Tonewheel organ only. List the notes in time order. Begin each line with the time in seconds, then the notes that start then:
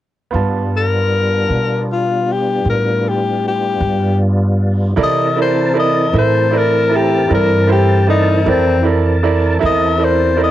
0.34 G3 B3 D4 F4
5.00 E3 C4 A#4 A5
9.61 E3 C4 A#4 A5